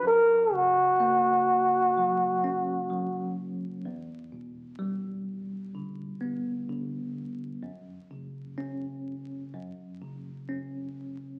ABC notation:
X:1
M:4/4
L:1/8
Q:1/4=63
K:F#phr
V:1 name="Flugelhorn"
^A F6 z | z8 | z8 |]
V:2 name="Tine electric piano" clef=bass
F,, C, ^A,2 F, C F,2 | E,, B,, G,2 D, B, D,2 | F,, C, C2 F,, C, C2 |]